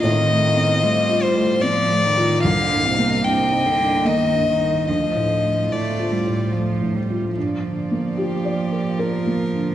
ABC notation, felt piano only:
X:1
M:3/4
L:1/8
Q:1/4=74
K:Gm
V:1 name="Felt piano"
z6 | z6 | z6 | z2 G2 B2 |]
V:2 name="Felt piano"
(3A,, A, C (3A, F A, (3C A, F | (3C,, G,, B, (3G,, E G,, (3B, G,, E | (3D,, A,, A, (3A,, F A,, (3A, A,, F | (3G,, D, B, (3F d B (3F B, D, |]